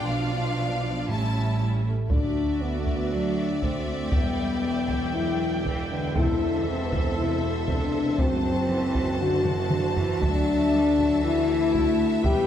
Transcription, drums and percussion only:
2.10 taiko
2.86 taiko
3.62 taiko
4.12 taiko
4.89 taiko
5.65 taiko
6.16 taiko
6.92 taiko
7.68 taiko
8.18 taiko
8.95 taiko
9.45 taiko mid
9.71 taiko mid
9.96 taiko low
10.22 taiko
10.99 taiko
11.75 taiko
12.26 taiko

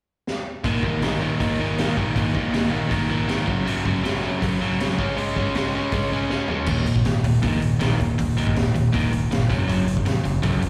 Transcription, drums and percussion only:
0.27 snare
0.64 kick, open hi-hat
0.83 kick
1.02 snare, open hi-hat
1.40 kick, open hi-hat
1.78 snare, open hi-hat
1.97 kick
2.16 kick, open hi-hat
2.35 kick
2.54 snare, open hi-hat
2.91 kick, open hi-hat
3.29 snare, open hi-hat
3.48 kick
3.67 open hi-hat
3.86 kick
4.05 snare, open hi-hat
4.42 kick, open hi-hat
4.80 snare, open hi-hat
4.99 kick
5.18 open hi-hat
5.36 kick
5.55 snare, open hi-hat
5.92 kick, open hi-hat
6.30 snare
6.48 floor tom
6.66 kick, crash
6.86 open hi-hat
6.96 kick
7.05 snare, open hi-hat
7.24 open hi-hat
7.43 kick, open hi-hat
7.62 open hi-hat
7.81 snare, open hi-hat
8.00 kick, open hi-hat
8.19 kick, open hi-hat
8.38 open hi-hat
8.47 kick
8.56 snare, open hi-hat
8.75 open hi-hat
8.94 kick, open hi-hat
9.13 open hi-hat
9.32 snare, open hi-hat
9.50 kick, open hi-hat
9.69 open hi-hat
9.88 open hi-hat
9.97 kick
10.06 snare, open hi-hat
10.25 open hi-hat
10.43 kick, open hi-hat
10.62 open hi-hat

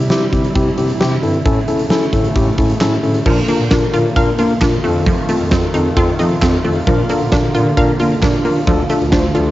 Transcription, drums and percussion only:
0.10 snare, closed hi-hat
0.33 kick, closed hi-hat
0.44 closed hi-hat
0.55 kick, closed hi-hat
0.78 closed hi-hat
0.89 closed hi-hat
1.01 snare, closed hi-hat
1.23 open hi-hat
1.34 closed hi-hat
1.46 kick, closed hi-hat
1.68 closed hi-hat
1.79 closed hi-hat
1.90 snare, closed hi-hat
2.13 kick, closed hi-hat
2.25 closed hi-hat
2.36 kick, closed hi-hat
2.58 kick, closed hi-hat
2.70 closed hi-hat
2.81 snare, clap, closed hi-hat
3.03 open hi-hat
3.15 closed hi-hat
3.26 kick, crash
3.48 closed hi-hat
3.71 kick, snare, closed hi-hat
3.94 closed hi-hat
4.16 kick, closed hi-hat
4.38 closed hi-hat
4.61 kick, snare, clap, closed hi-hat
4.84 open hi-hat
5.06 kick, closed hi-hat
5.29 closed hi-hat
5.51 kick, snare, closed hi-hat
5.74 closed hi-hat
5.97 kick, closed hi-hat
6.19 closed hi-hat
6.42 kick, snare, clap, closed hi-hat
6.64 open hi-hat
6.87 kick, closed hi-hat
7.09 closed hi-hat
7.32 kick, snare, closed hi-hat
7.54 closed hi-hat
7.77 kick, closed hi-hat
7.99 closed hi-hat
8.22 kick, snare, clap, closed hi-hat
8.45 open hi-hat
8.67 kick, closed hi-hat
8.90 closed hi-hat
9.12 kick, snare, closed hi-hat
9.35 closed hi-hat

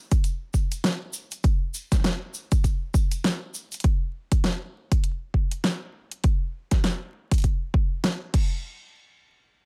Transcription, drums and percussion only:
0.11 kick, closed hi-hat, shaker
0.24 closed hi-hat, shaker
0.54 kick, shaker
0.72 closed hi-hat, shaker
0.84 snare, closed hi-hat, shaker
1.13 shaker
1.31 closed hi-hat, shaker
1.44 kick, closed hi-hat, shaker
1.74 shaker
1.92 kick, snare, closed hi-hat, shaker
1.94 snare
1.98 snare
2.00 snare
2.02 snare
2.04 snare, closed hi-hat, shaker
2.34 shaker
2.52 kick, closed hi-hat, shaker
2.64 kick, closed hi-hat, shaker
2.94 kick, shaker
3.12 closed hi-hat, shaker
3.24 snare, closed hi-hat, shaker
3.54 shaker
3.72 closed hi-hat, shaker
3.74 closed hi-hat
3.80 closed hi-hat
3.84 kick, closed hi-hat
4.32 kick, closed hi-hat
4.44 snare, closed hi-hat
4.92 kick, closed hi-hat
5.04 closed hi-hat
5.34 kick
5.51 closed hi-hat
5.64 snare, closed hi-hat
6.11 closed hi-hat
6.24 kick, closed hi-hat
6.71 kick, snare, closed hi-hat
6.84 snare, closed hi-hat
7.31 kick, closed hi-hat
7.34 closed hi-hat
7.38 closed hi-hat
7.40 closed hi-hat
7.42 closed hi-hat
7.44 kick, closed hi-hat
7.74 kick
8.04 snare, closed hi-hat
8.34 kick, closed hi-hat, crash

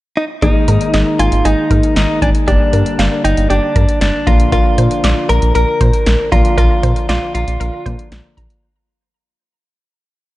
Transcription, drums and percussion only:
0.42 kick, closed hi-hat
0.68 closed hi-hat
0.81 closed hi-hat
0.94 snare, closed hi-hat
1.19 closed hi-hat
1.32 closed hi-hat
1.45 closed hi-hat
1.71 kick, closed hi-hat
1.83 closed hi-hat
1.96 snare, closed hi-hat
2.22 kick, closed hi-hat
2.35 closed hi-hat
2.48 kick, closed hi-hat
2.73 closed hi-hat
2.86 closed hi-hat
2.99 snare, closed hi-hat
3.25 closed hi-hat
3.37 closed hi-hat
3.50 closed hi-hat
3.76 kick, closed hi-hat
3.89 closed hi-hat
4.01 snare, closed hi-hat
4.27 kick, closed hi-hat
4.40 closed hi-hat
4.52 kick, closed hi-hat
4.78 closed hi-hat
4.91 closed hi-hat
5.04 snare, closed hi-hat
5.29 closed hi-hat
5.42 closed hi-hat
5.55 closed hi-hat
5.81 kick, closed hi-hat
5.93 closed hi-hat
6.06 snare, closed hi-hat
6.32 kick, closed hi-hat
6.45 closed hi-hat
6.58 kick, closed hi-hat
6.83 kick, closed hi-hat
6.96 closed hi-hat
7.09 snare, closed hi-hat
7.35 closed hi-hat
7.48 closed hi-hat
7.61 closed hi-hat
7.86 kick, closed hi-hat
7.99 closed hi-hat
8.12 snare, closed hi-hat
8.37 kick, closed hi-hat
8.50 closed hi-hat

